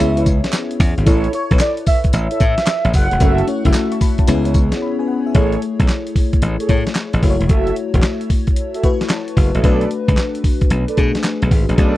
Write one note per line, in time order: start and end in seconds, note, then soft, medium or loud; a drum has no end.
0.00 0.40 C#2 loud
0.00 0.86 B3 loud
0.00 0.87 C#4 medium
0.00 0.87 E4 medium
0.00 0.87 G#4 medium
0.00 0.87 C#5 loud
0.00 0.79 E5 loud
0.00 tambourine medium
0.16 0.28 E4 medium
0.16 0.29 B4 medium
0.16 0.29 C#5 medium
0.16 closed hi-hat medium
0.26 kick medium
0.26 closed hi-hat medium
0.26 tambourine medium
0.44 snare medium
0.44 closed hi-hat medium
0.52 snare loud
0.52 clap medium
0.52 closed hi-hat medium
0.52 tambourine medium
0.71 closed hi-hat medium
0.80 0.93 E2 loud
0.80 kick medium
0.80 open hi-hat medium
0.80 tambourine medium
0.97 1.04 G#1 medium
0.97 closed hi-hat medium
1.06 1.27 A1 loud
1.06 1.31 E4 loud
1.06 1.26 E4 loud
1.06 1.32 A4 medium
1.06 1.26 A4 medium
1.06 1.32 C#5 loud
1.06 1.27 C#5 loud
1.06 kick loud
1.06 closed hi-hat medium
1.06 tambourine medium
1.24 closed hi-hat soft
1.33 1.44 E4 medium
1.33 1.44 A4 medium
1.33 1.59 C#5 medium
1.33 1.45 C#5 medium
1.33 closed hi-hat medium
1.51 1.58 B1 medium
1.51 2.12 E4 medium
1.51 2.13 A4 medium
1.51 2.13 B4 medium
1.51 kick loud
1.51 closed hi-hat medium
1.59 1.73 D5 medium
1.59 snare loud
1.59 clap medium
1.59 closed hi-hat medium
1.59 tambourine medium
1.77 closed hi-hat medium
1.86 1.99 E5 loud
1.86 kick loud
1.86 open hi-hat medium
1.86 tambourine medium
2.04 kick medium
2.04 closed hi-hat soft
2.13 2.27 A1 loud
2.13 2.90 E5 loud
2.13 closed hi-hat medium
2.13 tambourine medium
2.31 2.43 E4 medium
2.31 2.43 A4 medium
2.31 2.43 C#5 medium
2.31 closed hi-hat medium
2.40 2.54 A2 medium
2.40 kick medium
2.40 closed hi-hat medium
2.40 tambourine medium
2.58 snare medium
2.58 closed hi-hat medium
2.67 snare loud
2.67 clap medium
2.67 closed hi-hat medium
2.67 tambourine medium
2.85 2.92 A1 loud
2.85 closed hi-hat medium
2.93 3.07 F#1 loud
2.93 3.44 F#5 loud
2.93 kick loud
2.93 open hi-hat medium
2.93 tambourine medium
3.11 3.19 E1 medium
3.11 closed hi-hat medium
3.20 3.41 F#1 medium
3.20 3.40 A3 medium
3.20 3.41 C#4 medium
3.20 3.41 E4 medium
3.20 3.46 F#4 loud
3.20 3.41 F#4 medium
3.20 3.46 A4 loud
3.20 3.41 C#5 medium
3.20 3.46 E5 loud
3.20 kick loud
3.20 closed hi-hat medium
3.20 tambourine medium
3.38 closed hi-hat soft
3.47 3.58 A3 medium
3.47 3.58 C#4 medium
3.47 3.58 E4 medium
3.47 3.58 F#4 medium
3.47 3.59 C#5 medium
3.47 closed hi-hat medium
3.64 3.72 F#1 loud
3.64 4.26 A3 medium
3.64 4.26 C#4 medium
3.64 4.26 E4 medium
3.64 4.27 F#4 medium
3.64 3.75 E5 loud
3.64 kick loud
3.64 closed hi-hat medium
3.74 3.91 C#5 medium
3.74 3.91 A5 medium
3.74 snare loud
3.74 clap medium
3.74 closed hi-hat medium
3.74 tambourine loud
3.92 4.01 E5 medium
3.92 4.01 C#6 medium
3.92 closed hi-hat medium
4.01 4.18 B5 medium
4.01 kick medium
4.01 open hi-hat medium
4.01 tambourine medium
4.18 4.28 C#5 medium
4.18 4.44 A5 medium
4.18 kick medium
4.18 closed hi-hat soft
4.27 4.69 C#2 loud
4.27 5.15 B3 loud
4.27 5.15 C#4 loud
4.27 5.15 E4 medium
4.27 4.82 G#4 medium
4.27 4.82 C#5 loud
4.27 closed hi-hat loud
4.27 tambourine medium
4.45 4.57 E4 medium
4.45 4.57 B4 medium
4.45 4.57 C#5 medium
4.45 closed hi-hat medium
4.54 kick medium
4.54 closed hi-hat medium
4.54 tambourine medium
4.72 snare medium
4.72 closed hi-hat medium
4.82 4.98 B5 medium
4.99 5.08 B4 medium
4.99 5.08 G#5 medium
5.08 5.25 F#5 medium
5.26 5.34 G#4 medium
5.26 5.52 E5 medium
5.34 5.55 A1 medium
5.34 6.03 A3 medium
5.34 6.03 E4 medium
5.34 5.60 G#4 medium
5.34 6.04 G#4 medium
5.34 5.60 A4 medium
5.34 5.60 C#5 loud
5.34 6.04 C#5 loud
5.34 kick loud
5.34 closed hi-hat medium
5.52 closed hi-hat soft
5.62 closed hi-hat medium
5.79 5.86 B1 medium
5.79 kick loud
5.79 closed hi-hat medium
5.88 snare loud
5.88 clap medium
5.88 closed hi-hat medium
6.07 closed hi-hat medium
6.16 kick medium
6.16 open hi-hat medium
6.33 kick medium
6.33 closed hi-hat soft
6.42 6.56 A1 loud
6.42 closed hi-hat medium
6.60 6.71 G#4 medium
6.60 6.72 A4 medium
6.60 6.72 C#5 medium
6.60 closed hi-hat medium
6.69 6.83 A2 medium
6.69 7.19 A3 medium
6.69 7.19 E4 medium
6.69 7.19 G#4 medium
6.69 7.20 C#5 loud
6.69 kick medium
6.69 closed hi-hat medium
6.87 snare medium
6.87 closed hi-hat medium
6.95 snare loud
6.95 clap medium
6.95 closed hi-hat medium
7.13 7.20 A1 medium
7.13 closed hi-hat medium
7.23 7.36 F#1 medium
7.23 8.10 A3 medium
7.23 8.10 E4 medium
7.23 8.10 F#4 medium
7.23 7.32 B4 medium
7.23 kick medium
7.23 open hi-hat medium
7.30 8.14 C#5 loud
7.40 7.47 E1 medium
7.40 closed hi-hat medium
7.49 7.70 F#1 medium
7.49 7.75 F#4 medium
7.49 7.75 A4 medium
7.49 7.75 E5 loud
7.49 kick loud
7.49 closed hi-hat medium
7.67 closed hi-hat soft
7.76 closed hi-hat medium
7.94 8.01 E1 medium
7.94 kick loud
7.94 closed hi-hat medium
8.02 snare loud
8.02 clap medium
8.02 closed hi-hat medium
8.21 closed hi-hat soft
8.30 kick medium
8.30 open hi-hat medium
8.47 kick medium
8.47 closed hi-hat soft
8.56 closed hi-hat medium
8.74 8.86 F#4 medium
8.74 8.86 A4 medium
8.74 8.86 E5 medium
8.74 closed hi-hat medium
8.83 9.34 A3 medium
8.83 9.34 E4 medium
8.83 9.34 F#4 medium
8.83 9.34 B4 loud
8.83 9.09 C#6 medium
8.83 kick medium
8.83 closed hi-hat medium
9.01 snare medium
9.01 closed hi-hat medium
9.09 9.35 A5 medium
9.09 snare loud
9.09 clap medium
9.09 closed hi-hat medium
9.28 closed hi-hat medium
9.37 9.50 F#1 medium
9.37 9.62 E5 medium
9.37 kick loud
9.37 open hi-hat medium
9.54 9.62 A1 loud
9.54 9.66 F#4 medium
9.54 9.62 A4 medium
9.54 9.66 E5 medium
9.54 closed hi-hat medium
9.63 9.84 B1 loud
9.63 10.32 A3 medium
9.63 10.32 D4 medium
9.63 10.32 F#4 medium
9.63 9.89 A4 loud
9.63 9.89 B4 medium
9.63 10.33 B4 loud
9.63 9.89 D5 loud
9.63 kick loud
9.63 closed hi-hat medium
9.81 closed hi-hat soft
9.91 closed hi-hat medium
10.08 10.15 C#2 medium
10.08 kick loud
10.08 closed hi-hat medium
10.17 snare loud
10.17 clap medium
10.17 closed hi-hat medium
10.35 closed hi-hat medium
10.44 kick medium
10.44 open hi-hat medium
10.61 kick medium
10.61 closed hi-hat soft
10.70 10.84 B1 medium
10.70 closed hi-hat medium
10.88 11.00 A4 medium
10.88 11.00 B4 medium
10.88 11.00 D5 medium
10.88 closed hi-hat medium
10.97 11.11 B2 medium
10.97 11.48 A3 medium
10.97 11.48 D4 medium
10.97 11.48 F#4 medium
10.97 11.48 G#4 loud
10.97 kick medium
10.97 closed hi-hat medium
11.15 snare medium
11.15 closed hi-hat medium
11.24 snare loud
11.24 clap medium
11.24 closed hi-hat medium
11.42 11.49 B1 medium
11.42 closed hi-hat medium
11.51 11.64 G#1 medium
11.51 kick loud
11.51 open hi-hat medium
11.69 11.76 A1 medium
11.69 closed hi-hat medium
11.78 11.97 B1 loud
11.78 11.97 A3 medium
11.78 11.86 C#4 medium
11.78 11.97 F#4 medium
11.78 11.97 G#4 medium
11.78 11.97 A4 loud
11.78 11.97 B4 loud
11.78 11.97 D5 loud
11.78 kick loud
11.78 closed hi-hat medium
11.84 11.97 D4 medium